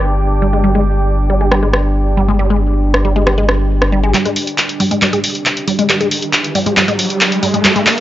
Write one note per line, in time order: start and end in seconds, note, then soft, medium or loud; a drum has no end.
0.00 4.12 G1 medium
0.00 8.00 D4 medium
0.00 8.00 G4 medium
0.00 8.00 G5 medium
0.00 8.00 D6 medium
0.42 0.49 G3 medium
0.53 0.63 G#3 medium
0.64 0.68 G3 medium
0.75 0.81 G#3 medium
1.30 1.36 G3 medium
1.41 1.50 G#3 medium
1.51 1.55 G3 medium
1.51 cross-stick medium
1.63 1.69 G#3 medium
1.73 cross-stick medium
2.17 2.24 G3 medium
2.28 2.38 G#3 medium
2.39 2.43 G3 medium
2.50 2.57 G#3 medium
2.94 cross-stick medium
3.05 3.11 G3 medium
3.16 3.25 G#3 medium
3.27 3.31 G3 medium
3.27 cross-stick medium
3.38 3.44 G#3 medium
3.49 cross-stick medium
3.82 cross-stick medium
3.92 3.99 G3 medium
4.03 4.13 G#3 medium
4.14 4.18 G3 medium
4.14 clap soft
4.14 closed hi-hat medium
4.14 riser medium
4.25 4.32 G#3 medium
4.25 closed hi-hat medium
4.36 open hi-hat loud
4.47 closed hi-hat medium
4.58 clap soft
4.58 closed hi-hat loud
4.69 closed hi-hat medium
4.80 4.87 G3 medium
4.80 open hi-hat loud
4.91 5.01 G#3 medium
4.91 closed hi-hat medium
5.02 5.06 G3 medium
5.02 clap medium
5.02 closed hi-hat medium
5.13 5.19 G#3 medium
5.13 closed hi-hat medium
5.24 open hi-hat loud
5.35 closed hi-hat medium
5.46 clap medium
5.46 closed hi-hat loud
5.57 closed hi-hat medium
5.68 5.74 G3 medium
5.68 open hi-hat loud
5.79 5.88 G#3 medium
5.79 closed hi-hat medium
5.89 5.93 G3 medium
5.89 clap medium
5.89 closed hi-hat loud
6.01 6.07 G#3 medium
6.01 closed hi-hat medium
6.11 open hi-hat loud
6.22 closed hi-hat medium
6.33 clap medium
6.33 closed hi-hat loud
6.44 closed hi-hat medium
6.55 6.62 G3 medium
6.55 open hi-hat loud
6.66 6.76 G#3 medium
6.66 closed hi-hat medium
6.77 6.81 G3 medium
6.77 clap medium
6.77 closed hi-hat medium
6.88 6.95 G#3 medium
6.88 closed hi-hat medium
6.99 open hi-hat loud
7.10 closed hi-hat medium
7.21 clap medium
7.21 closed hi-hat loud
7.32 closed hi-hat medium
7.43 7.49 G3 medium
7.43 open hi-hat loud
7.54 7.63 G#3 medium
7.54 closed hi-hat medium
7.65 7.69 G3 medium
7.65 clap medium
7.65 closed hi-hat medium
7.76 7.82 G#3 medium
7.76 closed hi-hat medium
7.87 clap medium
7.87 open hi-hat loud